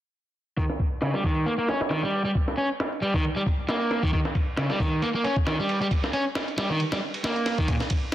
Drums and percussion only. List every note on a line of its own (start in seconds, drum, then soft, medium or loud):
0.57 kick loud
0.57 ride medium
0.69 snare soft
0.79 kick medium
0.79 ride medium
1.02 snare loud
1.02 ride medium
1.14 snare soft
1.24 kick medium
1.24 ride medium
1.46 ride medium
1.68 snare medium
1.68 ride medium
1.81 snare loud
1.81 ride medium
1.91 snare loud
1.91 ride medium
2.13 ride medium
2.25 ride soft
2.35 kick loud
2.35 ride medium
2.48 snare soft
2.58 ride medium
2.80 snare loud
2.80 ride medium
2.92 ride soft
3.02 ride medium
3.14 kick medium
3.24 ride medium
3.46 kick medium
3.46 open hi-hat medium
3.69 snare loud
3.69 ride medium
3.81 ride soft
3.91 snare medium
3.91 ride medium
4.03 kick medium
4.13 kick loud
4.13 ride medium
4.25 snare soft
4.35 kick medium
4.35 ride medium
4.57 snare loud
4.57 ride medium
4.70 snare medium
4.80 kick medium
4.80 ride medium
5.02 ride medium
5.24 ride medium
5.36 kick loud
5.47 snare loud
5.47 ride medium
5.69 ride medium
5.82 ride soft
5.91 kick loud
5.91 ride medium
6.04 snare soft
6.13 ride medium
6.35 snare loud
6.35 ride medium
6.48 ride soft
6.58 snare loud
6.58 ride medium
6.80 ride medium
6.92 snare loud
6.92 ride medium
7.14 ride medium
7.24 snare loud
7.24 ride medium
7.36 ride soft
7.46 snare medium
7.46 ride medium
7.58 kick medium
7.68 kick loud
7.68 ride medium
7.80 snare soft
7.90 kick medium
7.90 ride medium